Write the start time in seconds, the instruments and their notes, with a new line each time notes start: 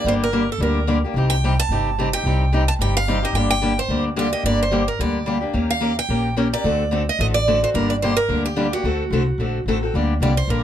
0.04 upright bass G1, steel-string acoustic guitar D3 G3 A#3 D4 G4 C5
0.24 steel-string acoustic guitar A#4
0.32 steel-string acoustic guitar D3 G3 A#3 D4 G4
0.52 steel-string acoustic guitar A4
0.58 upright bass D2, steel-string acoustic guitar D3 G3 A#3 D4 G4
0.63 steel-string acoustic guitar A#4
0.87 steel-string acoustic guitar D3 G3 A#3 D4 G4
1.04 steel-string acoustic guitar A#3 D4 G4
1.14 upright bass C2, steel-string acoustic guitar C3 G3 C4 D#4 G4
1.30 steel-string acoustic guitar G5
1.44 steel-string acoustic guitar C3 G3 C4 D#4 G4
1.60 steel-string acoustic guitar A5
1.69 upright bass G1, steel-string acoustic guitar C3 G3 C4 D#4 G4
1.99 steel-string acoustic guitar C3 G3 C4 D#4 G4
2.13 steel-string acoustic guitar C4 D#4 G4 G5
2.24 upright bass C2, steel-string acoustic guitar C3 G3 C4 D#4 G4
2.52 steel-string acoustic guitar C3 G3 C4 D#4 G4
2.68 steel-string acoustic guitar A5
2.79 upright bass G1, steel-string acoustic guitar C3 G3 C4 D#4 G4 G5
2.97 steel-string acoustic guitar F5
3.08 steel-string acoustic guitar C3 G3 C4 D#4 G4
3.22 steel-string acoustic guitar C4 D#4 G4 D#5
3.33 upright bass G1, steel-string acoustic guitar D3 G3 A#3 D4 G4 G5
3.50 steel-string acoustic guitar G5
3.62 steel-string acoustic guitar D3 G3 A#3 D4 G4
3.79 steel-string acoustic guitar C5
3.88 upright bass D2, steel-string acoustic guitar D3 G3 A#3 D4 G4
4.16 steel-string acoustic guitar D3 G3 A#3 D4 G4 D5
4.32 steel-string acoustic guitar A#3 D4 G4 D#5
4.44 upright bass G1, steel-string acoustic guitar D3 G3 A#3 D4 G4 D5
4.63 steel-string acoustic guitar C5
4.71 steel-string acoustic guitar D3 G3 A#3 D4 G4
4.88 steel-string acoustic guitar A#4
4.99 upright bass D2, steel-string acoustic guitar D3 G3 A#3 D4 G4 D5
5.26 steel-string acoustic guitar D3 G3 A#3 D4 G4
5.41 steel-string acoustic guitar A#3 D4 G4
5.53 upright bass D#2, steel-string acoustic guitar D#3 A#3 C#4 G4 A#4
5.70 steel-string acoustic guitar F5
5.80 steel-string acoustic guitar D#3 A#3 C#4 G4 A#4
5.99 steel-string acoustic guitar G5
6.09 upright bass A#1, steel-string acoustic guitar D#3 A#3 C#4 G4 A#4
6.37 steel-string acoustic guitar D#3 A#3 C#4 G4 A#4
6.53 steel-string acoustic guitar C#4 G4 A#4 D5
6.64 upright bass D2, steel-string acoustic guitar D3 A3 C4 F#4 A4
6.91 steel-string acoustic guitar D3 A3 C4 F#4 A4
7.09 steel-string acoustic guitar D#5
7.19 upright bass A1, steel-string acoustic guitar D3 A3 C4 F#4 A4 D#5
7.34 steel-string acoustic guitar D5
7.48 steel-string acoustic guitar D3 A3 C4 F#4 A4
7.62 steel-string acoustic guitar C4 F#4 A4 C5
7.74 upright bass G1, steel-string acoustic guitar D3 G3 A#3 D4 G4 A#4
7.90 steel-string acoustic guitar D5
8.02 steel-string acoustic guitar D3 G3 A#3 D4 G4 C5
8.17 steel-string acoustic guitar A#4
8.29 upright bass D2, steel-string acoustic guitar D3 G3 A#3 D4 G4
8.46 steel-string acoustic guitar G4
8.56 steel-string acoustic guitar D3 G3 A#3 D4 G4
8.72 steel-string acoustic guitar A#3 D4 F#4 G4
8.83 upright bass D2, steel-string acoustic guitar D3 A3 C4 F#4 A4
9.10 upright bass C2, steel-string acoustic guitar D3 A3 C4 F#4 A4
9.38 upright bass A#1, steel-string acoustic guitar D3 A3 C4 F#4 A4
9.66 upright bass A1, steel-string acoustic guitar D3 A3 C4 F#4 A4
9.83 steel-string acoustic guitar C4 F#4 A4
9.94 upright bass D2, steel-string acoustic guitar D3 G3 A#3 D4 G4
10.20 upright bass C2, steel-string acoustic guitar D3 G3 A#3 D4 G4 D5
10.37 steel-string acoustic guitar C5
10.48 upright bass A#1, steel-string acoustic guitar D3 G3 A#3 D4 G4 A#4